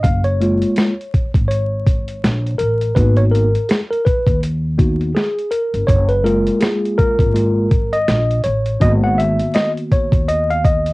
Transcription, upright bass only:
0, 0, Header, 1, 2, 480
1, 0, Start_track
1, 0, Key_signature, 6, "major"
1, 0, Tempo, 731707
1, 25, Time_signature, 4, 2, 24, 8
1, 7171, End_track
2, 0, Start_track
2, 0, Title_t, "Upright bass"
2, 0, Program_c, 0, 32
2, 26, Note_on_c, 0, 30, 102
2, 407, Note_off_c, 0, 30, 0
2, 884, Note_on_c, 0, 32, 88
2, 1437, Note_off_c, 0, 32, 0
2, 1467, Note_on_c, 0, 34, 105
2, 1657, Note_off_c, 0, 34, 0
2, 1708, Note_on_c, 0, 33, 86
2, 1898, Note_off_c, 0, 33, 0
2, 1943, Note_on_c, 0, 32, 108
2, 2326, Note_off_c, 0, 32, 0
2, 2802, Note_on_c, 0, 39, 93
2, 3356, Note_off_c, 0, 39, 0
2, 3765, Note_on_c, 0, 31, 81
2, 3843, Note_off_c, 0, 31, 0
2, 3864, Note_on_c, 0, 30, 117
2, 4246, Note_off_c, 0, 30, 0
2, 4719, Note_on_c, 0, 32, 90
2, 5275, Note_off_c, 0, 32, 0
2, 5304, Note_on_c, 0, 34, 105
2, 5495, Note_off_c, 0, 34, 0
2, 5547, Note_on_c, 0, 33, 99
2, 5737, Note_off_c, 0, 33, 0
2, 5781, Note_on_c, 0, 32, 115
2, 6164, Note_off_c, 0, 32, 0
2, 6640, Note_on_c, 0, 39, 83
2, 7171, Note_off_c, 0, 39, 0
2, 7171, End_track
0, 0, End_of_file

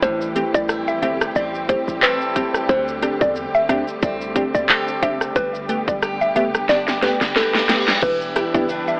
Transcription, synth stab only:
0, 0, Header, 1, 2, 480
1, 0, Start_track
1, 0, Tempo, 666667
1, 18, Time_signature, 4, 2, 24, 8
1, 6479, End_track
2, 0, Start_track
2, 0, Title_t, "Synth stab"
2, 0, Program_c, 0, 62
2, 256, Note_on_c, 0, 57, 78
2, 258, Note_on_c, 0, 60, 71
2, 260, Note_on_c, 0, 67, 89
2, 365, Note_off_c, 0, 57, 0
2, 366, Note_off_c, 0, 60, 0
2, 366, Note_off_c, 0, 67, 0
2, 736, Note_on_c, 0, 57, 78
2, 738, Note_on_c, 0, 60, 73
2, 740, Note_on_c, 0, 67, 86
2, 845, Note_off_c, 0, 57, 0
2, 846, Note_off_c, 0, 60, 0
2, 847, Note_off_c, 0, 67, 0
2, 1216, Note_on_c, 0, 57, 80
2, 1218, Note_on_c, 0, 60, 70
2, 1220, Note_on_c, 0, 67, 82
2, 1325, Note_off_c, 0, 57, 0
2, 1326, Note_off_c, 0, 60, 0
2, 1327, Note_off_c, 0, 67, 0
2, 1697, Note_on_c, 0, 57, 81
2, 1698, Note_on_c, 0, 60, 74
2, 1700, Note_on_c, 0, 67, 85
2, 1805, Note_off_c, 0, 57, 0
2, 1806, Note_off_c, 0, 60, 0
2, 1807, Note_off_c, 0, 67, 0
2, 2176, Note_on_c, 0, 60, 76
2, 2178, Note_on_c, 0, 62, 74
2, 2180, Note_on_c, 0, 67, 88
2, 2285, Note_off_c, 0, 60, 0
2, 2286, Note_off_c, 0, 62, 0
2, 2287, Note_off_c, 0, 67, 0
2, 2657, Note_on_c, 0, 60, 75
2, 2659, Note_on_c, 0, 62, 71
2, 2660, Note_on_c, 0, 67, 88
2, 2765, Note_off_c, 0, 60, 0
2, 2766, Note_off_c, 0, 62, 0
2, 2767, Note_off_c, 0, 67, 0
2, 3136, Note_on_c, 0, 60, 77
2, 3139, Note_on_c, 0, 62, 69
2, 3140, Note_on_c, 0, 67, 86
2, 3245, Note_off_c, 0, 60, 0
2, 3246, Note_off_c, 0, 62, 0
2, 3247, Note_off_c, 0, 67, 0
2, 3617, Note_on_c, 0, 60, 80
2, 3619, Note_on_c, 0, 62, 69
2, 3620, Note_on_c, 0, 67, 87
2, 3725, Note_off_c, 0, 60, 0
2, 3726, Note_off_c, 0, 62, 0
2, 3727, Note_off_c, 0, 67, 0
2, 4096, Note_on_c, 0, 57, 77
2, 4098, Note_on_c, 0, 59, 73
2, 4100, Note_on_c, 0, 67, 88
2, 4205, Note_off_c, 0, 57, 0
2, 4206, Note_off_c, 0, 59, 0
2, 4207, Note_off_c, 0, 67, 0
2, 4576, Note_on_c, 0, 57, 77
2, 4578, Note_on_c, 0, 59, 72
2, 4580, Note_on_c, 0, 67, 84
2, 4685, Note_off_c, 0, 57, 0
2, 4686, Note_off_c, 0, 59, 0
2, 4687, Note_off_c, 0, 67, 0
2, 5057, Note_on_c, 0, 57, 80
2, 5059, Note_on_c, 0, 59, 68
2, 5060, Note_on_c, 0, 67, 86
2, 5165, Note_off_c, 0, 57, 0
2, 5166, Note_off_c, 0, 59, 0
2, 5167, Note_off_c, 0, 67, 0
2, 5537, Note_on_c, 0, 57, 78
2, 5538, Note_on_c, 0, 59, 76
2, 5540, Note_on_c, 0, 67, 85
2, 5645, Note_off_c, 0, 57, 0
2, 5646, Note_off_c, 0, 59, 0
2, 5647, Note_off_c, 0, 67, 0
2, 6017, Note_on_c, 0, 64, 79
2, 6020, Note_on_c, 0, 67, 84
2, 6071, Note_off_c, 0, 64, 0
2, 6073, Note_off_c, 0, 67, 0
2, 6151, Note_on_c, 0, 59, 75
2, 6152, Note_on_c, 0, 62, 69
2, 6153, Note_on_c, 0, 64, 66
2, 6155, Note_on_c, 0, 67, 78
2, 6236, Note_off_c, 0, 59, 0
2, 6237, Note_off_c, 0, 62, 0
2, 6238, Note_off_c, 0, 64, 0
2, 6238, Note_off_c, 0, 67, 0
2, 6479, End_track
0, 0, End_of_file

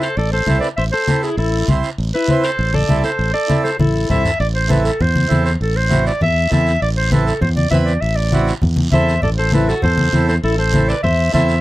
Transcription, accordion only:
0, 0, Header, 1, 2, 480
1, 0, Start_track
1, 0, Tempo, 301963
1, 1235, Time_signature, 4, 2, 24, 8
1, 18454, End_track
2, 0, Start_track
2, 0, Title_t, "Accordion"
2, 0, Program_c, 0, 21
2, 751, Note_on_c, 0, 64, 62
2, 752, Note_on_c, 0, 60, 76
2, 757, Note_on_c, 0, 69, 84
2, 1089, Note_off_c, 0, 60, 0
2, 1089, Note_off_c, 0, 64, 0
2, 1092, Note_off_c, 0, 69, 0
2, 1719, Note_on_c, 0, 60, 73
2, 1719, Note_on_c, 0, 64, 66
2, 1724, Note_on_c, 0, 69, 75
2, 2054, Note_off_c, 0, 60, 0
2, 2054, Note_off_c, 0, 64, 0
2, 2056, Note_off_c, 0, 69, 0
2, 2671, Note_on_c, 0, 60, 73
2, 2678, Note_on_c, 0, 64, 64
2, 2685, Note_on_c, 0, 72, 77
2, 3011, Note_off_c, 0, 60, 0
2, 3014, Note_off_c, 0, 64, 0
2, 3017, Note_off_c, 0, 72, 0
2, 3642, Note_on_c, 0, 60, 68
2, 3646, Note_on_c, 0, 64, 66
2, 3659, Note_on_c, 0, 72, 80
2, 3977, Note_off_c, 0, 60, 0
2, 3979, Note_off_c, 0, 64, 0
2, 3985, Note_off_c, 0, 72, 0
2, 4579, Note_on_c, 0, 60, 76
2, 4589, Note_on_c, 0, 64, 68
2, 4595, Note_on_c, 0, 69, 85
2, 4926, Note_off_c, 0, 60, 0
2, 4931, Note_off_c, 0, 64, 0
2, 4934, Note_off_c, 0, 69, 0
2, 5529, Note_on_c, 0, 60, 70
2, 5535, Note_on_c, 0, 64, 64
2, 5540, Note_on_c, 0, 69, 84
2, 5881, Note_off_c, 0, 60, 0
2, 5884, Note_off_c, 0, 64, 0
2, 5886, Note_off_c, 0, 69, 0
2, 6495, Note_on_c, 0, 60, 70
2, 6506, Note_on_c, 0, 64, 69
2, 6513, Note_on_c, 0, 69, 78
2, 6844, Note_off_c, 0, 60, 0
2, 6850, Note_off_c, 0, 64, 0
2, 6853, Note_off_c, 0, 69, 0
2, 7441, Note_on_c, 0, 60, 65
2, 7450, Note_on_c, 0, 64, 64
2, 7459, Note_on_c, 0, 69, 86
2, 7797, Note_off_c, 0, 60, 0
2, 7802, Note_off_c, 0, 64, 0
2, 7806, Note_off_c, 0, 69, 0
2, 8397, Note_on_c, 0, 60, 70
2, 8402, Note_on_c, 0, 64, 69
2, 8414, Note_on_c, 0, 69, 88
2, 8755, Note_off_c, 0, 60, 0
2, 8758, Note_off_c, 0, 64, 0
2, 8763, Note_off_c, 0, 69, 0
2, 9376, Note_on_c, 0, 60, 70
2, 9377, Note_on_c, 0, 64, 62
2, 9390, Note_on_c, 0, 66, 81
2, 9724, Note_off_c, 0, 60, 0
2, 9725, Note_off_c, 0, 64, 0
2, 9731, Note_off_c, 0, 66, 0
2, 10340, Note_on_c, 0, 60, 76
2, 10351, Note_on_c, 0, 64, 73
2, 10352, Note_on_c, 0, 69, 82
2, 10686, Note_off_c, 0, 60, 0
2, 10691, Note_off_c, 0, 64, 0
2, 10692, Note_off_c, 0, 69, 0
2, 11306, Note_on_c, 0, 60, 71
2, 11321, Note_on_c, 0, 64, 65
2, 11325, Note_on_c, 0, 69, 87
2, 11649, Note_off_c, 0, 60, 0
2, 11656, Note_off_c, 0, 64, 0
2, 11658, Note_off_c, 0, 69, 0
2, 12255, Note_on_c, 0, 60, 70
2, 12259, Note_on_c, 0, 64, 69
2, 12267, Note_on_c, 0, 71, 87
2, 12603, Note_off_c, 0, 60, 0
2, 12605, Note_off_c, 0, 64, 0
2, 12609, Note_off_c, 0, 71, 0
2, 13228, Note_on_c, 0, 60, 73
2, 13232, Note_on_c, 0, 64, 66
2, 13234, Note_on_c, 0, 66, 84
2, 13569, Note_off_c, 0, 60, 0
2, 13571, Note_off_c, 0, 64, 0
2, 13572, Note_off_c, 0, 66, 0
2, 14187, Note_on_c, 0, 60, 74
2, 14187, Note_on_c, 0, 64, 69
2, 14200, Note_on_c, 0, 69, 83
2, 14528, Note_off_c, 0, 60, 0
2, 14528, Note_off_c, 0, 64, 0
2, 14534, Note_off_c, 0, 69, 0
2, 15139, Note_on_c, 0, 60, 69
2, 15146, Note_on_c, 0, 64, 60
2, 15156, Note_on_c, 0, 69, 81
2, 15484, Note_off_c, 0, 60, 0
2, 15487, Note_off_c, 0, 64, 0
2, 15492, Note_off_c, 0, 69, 0
2, 16101, Note_on_c, 0, 60, 83
2, 16108, Note_on_c, 0, 64, 69
2, 16111, Note_on_c, 0, 69, 84
2, 16444, Note_off_c, 0, 60, 0
2, 16447, Note_off_c, 0, 64, 0
2, 16449, Note_off_c, 0, 69, 0
2, 17058, Note_on_c, 0, 60, 74
2, 17065, Note_on_c, 0, 64, 72
2, 17070, Note_on_c, 0, 69, 75
2, 17402, Note_off_c, 0, 60, 0
2, 17405, Note_off_c, 0, 64, 0
2, 17408, Note_off_c, 0, 69, 0
2, 18000, Note_on_c, 0, 60, 83
2, 18009, Note_on_c, 0, 64, 73
2, 18012, Note_on_c, 0, 69, 83
2, 18352, Note_off_c, 0, 60, 0
2, 18357, Note_off_c, 0, 64, 0
2, 18358, Note_off_c, 0, 69, 0
2, 18454, End_track
0, 0, End_of_file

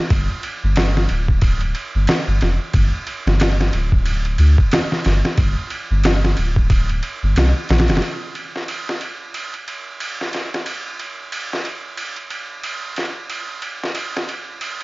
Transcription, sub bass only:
0, 0, Header, 1, 2, 480
1, 0, Start_track
1, 0, Key_signature, -2, "minor"
1, 0, Tempo, 659341
1, 80, Time_signature, 4, 2, 24, 8
1, 10803, End_track
2, 0, Start_track
2, 0, Title_t, "Sub bass"
2, 0, Program_c, 0, 38
2, 77, Note_on_c, 0, 31, 101
2, 202, Note_off_c, 0, 31, 0
2, 463, Note_on_c, 0, 31, 105
2, 782, Note_off_c, 0, 31, 0
2, 802, Note_on_c, 0, 26, 104
2, 1262, Note_off_c, 0, 26, 0
2, 1420, Note_on_c, 0, 31, 91
2, 1507, Note_off_c, 0, 31, 0
2, 1657, Note_on_c, 0, 31, 84
2, 1746, Note_off_c, 0, 31, 0
2, 1757, Note_on_c, 0, 29, 94
2, 1883, Note_off_c, 0, 29, 0
2, 1998, Note_on_c, 0, 31, 94
2, 2123, Note_off_c, 0, 31, 0
2, 2376, Note_on_c, 0, 31, 106
2, 2698, Note_off_c, 0, 31, 0
2, 2718, Note_on_c, 0, 26, 105
2, 3180, Note_off_c, 0, 26, 0
2, 3193, Note_on_c, 0, 38, 103
2, 3321, Note_off_c, 0, 38, 0
2, 3681, Note_on_c, 0, 31, 96
2, 3805, Note_off_c, 0, 31, 0
2, 3916, Note_on_c, 0, 31, 102
2, 4042, Note_off_c, 0, 31, 0
2, 4300, Note_on_c, 0, 31, 109
2, 4620, Note_off_c, 0, 31, 0
2, 4644, Note_on_c, 0, 26, 101
2, 5103, Note_off_c, 0, 26, 0
2, 5263, Note_on_c, 0, 31, 90
2, 5349, Note_off_c, 0, 31, 0
2, 5360, Note_on_c, 0, 36, 95
2, 5484, Note_off_c, 0, 36, 0
2, 5603, Note_on_c, 0, 34, 93
2, 5743, Note_on_c, 0, 29, 70
2, 5754, Note_off_c, 0, 34, 0
2, 5829, Note_off_c, 0, 29, 0
2, 10803, End_track
0, 0, End_of_file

